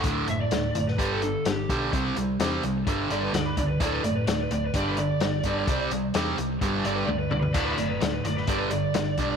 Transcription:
<<
  \new Staff \with { instrumentName = "Lead electric guitar" } { \time 4/4 \key g \major \tempo 4 = 128 r8 e''16 d''4 b'8 a'8. g'8 r8 | r2 r8 d''16 b'16 d''16 b'16 d''16 b'16 | d''16 b'16 d''16 b'16 d''16 b'16 d''16 b'16 d''16 b'16 d''4.~ | d''8 r2 d''16 b'16 d''16 b'16 d''16 b'16 |
d''16 b'16 d''16 b'16 d''16 b'16 d''16 b'16 d''16 b'16 d''4. | }
  \new Staff \with { instrumentName = "Overdriven electric guitar" } { \clef bass \time 4/4 \key g \major <d, a, d>8 <d, a,>8 <d, a,>8 <d, a,>8 <g, d g>8 <g, d>8 <g, d>8 <g, d g>8 | <c g c'>8 <c g>8 <c g c'>8 <c g>8 <g, d g>8 <g, d g>8 <g, d>8 <g, d>8 | <d, a, d>8 <d, a,>8 <d, a,>8 <d, a,>8 <g, d g>8 <g, d>8 <g, d>8 <g, d g>8 | <c g c'>8 <c g>8 <c g c'>8 <c g>8 <g, d g>8 <g, d g>8 <g, d>8 <g, d>8 |
<d, a, d>8 <d, a,>8 <d, a,>8 <d, a,>8 <g, d g>8 <g, d>8 <g, d>8 <g, d g>8 | }
  \new Staff \with { instrumentName = "Picked electric bass" } { \clef bass \time 4/4 \key g \major d,,8 fis,,8 d,,8 fis,,8 g,,4 g,,8 b,,8 | c,8 c,8 e,8 c,8 g,,8 g,,8 d,8 cis,8 | d,,8 fis,,8 d,,8 d,,8 g,,4 g,,8 g,,8 | c,8 c,8 e,8 c,8 g,,8 g,,8 d,8 cis,8 |
d,,8 fis,,8 d,,8 fis,,8 g,,4 g,,8 b,,8 | }
  \new DrumStaff \with { instrumentName = "Drums" } \drummode { \time 4/4 <hh bd>8 hh8 <hh sn>8 hh16 sn16 <hh bd>8 hh8 <hh sn>8 <hh bd>8 | <hh bd>8 hh8 <hh sn>8 hh8 <hh bd>8 hh8 <hh sn>8 <hh bd>8 | <hh bd>8 hh8 <hh sn>8 hh8 <hh bd>8 hh8 <hh sn>8 <hh bd>8 | <hh bd>8 hh8 <hh sn>8 hh8 <hh bd>8 hh8 tommh8 toml16 tomfh16 |
<cymc hh bd>8 hh8 <hh sn>8 hh16 sn16 <hh bd>8 hh8 <hh sn>8 <hh bd>8 | }
>>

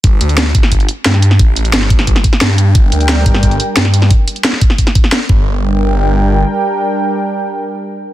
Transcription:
<<
  \new Staff \with { instrumentName = "Analog synth pad" } { \time 4/4 \key g \minor \tempo 4 = 177 r1 | r1 | <g d' bes' g''>1 | r2. r8 <g d' bes' g''>8~ |
<g d' bes' g''>1~ | <g d' bes' g''>1 | }
  \new Staff \with { instrumentName = "Detuned saw bass" } { \clef bass \time 4/4 \key g \minor g,,8 d,4 g,,4 r8 g,4 | a,,4 g,,4. r8 g,4 | g,,8 d,4 g,,4 r8 g,4 | r2. r8 g,,8~ |
g,,2. r4 | r1 | }
  \new DrumStaff \with { instrumentName = "Drums" } \drummode { \time 4/4 <hh bd>8 hh16 hh16 <hh sn>8 <hh bd>16 sn16 <hh bd>16 hh16 hh8 <hh sn>16 sn16 hh16 sn16 | <hh bd>8 hh16 hh16 <hh sn>16 sn16 <hh bd>16 sn16 <hh bd>16 <hh sn>16 <hh bd>16 sn16 <hh sn>8 hh8 | <hh bd>8 hh16 hh16 <hh sn>8 <hh bd>16 sn16 <hh bd>16 hh16 hh8 <hh sn>16 sn16 hh16 sn16 | <hh bd>8 hh16 hh16 <hh sn>16 sn16 <hh bd>16 sn16 <hh bd>16 <hh sn>16 <hh bd>16 sn16 <hh sn>8 bd8 |
r4 r4 r4 r4 | r4 r4 r4 r4 | }
>>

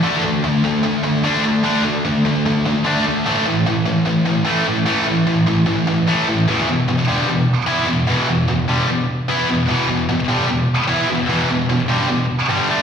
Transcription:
\new Staff \with { instrumentName = "Distorted electric guitar" } { \clef bass \time 4/4 \key d \lydian \tempo 4 = 149 <d a d'>8 <d a>8 <d a>8 <d a>8 <d a>8 <d a>8 <d a d'>8 <d a>8 | <d a d'>8 <d a>8 <d a>8 <d a>8 <d a>8 <d a>8 <d a d'>8 <d a>8 | <a, e a>8 <a, e>8 <a, e>8 <a, e>8 <a, e>8 <a, e>8 <a, e a>8 <a, e>8 | <a, e a>8 <a, e>8 <a, e>8 <a, e>8 <a, e>8 <a, e>8 <a, e a>8 <a, e>8 |
<e, b, e>8 <e, b,>8 <e, b,>8 <g, d g>8 <e, b,>8 r8 <e b e'>8 <e, b,>8 | <e, b, e>8 <e, b,>8 <e, b,>8 <g, d g>8 <e, b,>8 r8 <e b e'>8 <e, b,>8 | <e, b, e>8 <e, b,>8 <e, b,>8 <g, d g>8 <e, b,>8 r8 <e b e'>8 <e, b,>8 | <e, b, e>8 <e, b,>8 <e, b,>8 <g, d g>8 <e, b,>8 r8 <g, d g>8 <d a d'>8 | }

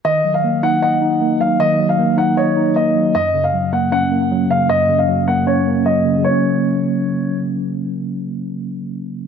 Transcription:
<<
  \new Staff \with { instrumentName = "Grand piano" } { \time 4/4 \key fis \major \tempo 4 = 155 dis''8. eis''8. fis''8 fis''4. eis''8 | dis''8. eis''8. fis''8 cis''4 dis''4 | dis''8. eis''8. fis''8 fis''4. eis''8 | dis''8. eis''8. fis''8 cis''4 dis''4 |
cis''2. r4 | r1 | }
  \new Staff \with { instrumentName = "Tine electric piano" } { \clef bass \time 4/4 \key fis \major dis8 fis8 ais8 dis'8 dis''8 dis'8 ais8 fis8 | dis8 fis8 ais8 dis'8 dis''8 dis'8 ais8 fis8 | fis,8 cis8 fis8 ais8 cis'8 ais8 fis8 cis8 | fis,8 cis8 fis8 ais8 cis'8 ais8 fis8 cis8 |
<cis fis ais cis'>1~ | <cis fis ais cis'>1 | }
>>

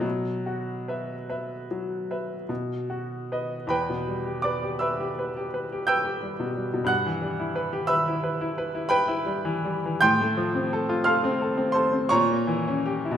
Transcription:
\new Staff \with { instrumentName = "Grand piano" } { \time 9/8 \key e \minor \tempo 4. = 55 << { fis1 r8 | <b' g'' b''>4 <d'' d'''>8 <e'' b'' e'''>4. <g'' e''' g'''>4. | <fis'' fis'''>4. <e'' b'' e'''>4. <b' g'' b''>4. | <g'' c''' g'''>4. <f'' c''' f'''>4 <c'' c'''>8 <cis'' ais'' cis'''>4. | } \\ { b,8 fis'8 <b' e''>8 <b' e''>8 fis8 <b' e''>8 b,8 fis'8 <b' dis''>8 | e,16 b,16 g16 g'16 b'16 g'16 b'16 g'16 b'16 g'16 b'16 g'16 b'16 g'16 g16 b,16 g16 b,16 | g,16 e16 g16 e'16 b'16 g'16 b'16 e'16 b'16 e'16 b'16 e'8 e'16 g16 e16 g16 e16 | a,16 a16 f16 c'16 a'16 f'16 a'16 c'16 a'16 c'16 a'16 c'16 ais,16 ais16 e16 cis'16 g'16 e'16 | } >> }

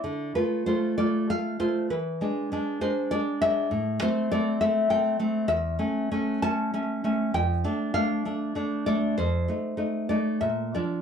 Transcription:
\new Staff \with { instrumentName = "Nylon-string guitar" } { \time 3/4 \key a \minor \tempo 4 = 98 << { d''8 b'8 c''8 d''8 f''8 c''8 | b'4. c''8 d''8 e''8~ | e''8 c''8 d''8 e''8 g''8 r8 | \key d \minor e''4. a''4. |
g''4 f''4. d''8 | c''4. d''8 e''8 d''8 | } \\ { d8 <a f'>8 <a f'>8 <a f'>8 <a f'>8 <a f'>8 | e8 <gis d'>8 <gis d'>8 <gis d'>8 <gis d'>8 <gis d'>8 | a,8 <a c'>8 <a c'>8 <a c'>8 <a c'>8 <a c'>8 | e,8 <a cis'>8 <a cis'>8 <a cis'>8 <a cis'>8 <a cis'>8 |
f,8 <a d'>8 <a d'>8 <a d'>8 <a d'>8 <a d'>8 | f,8 <a ees'>8 <a ees'>8 <a ees'>8 bes,8 <f d'>8 | } >> }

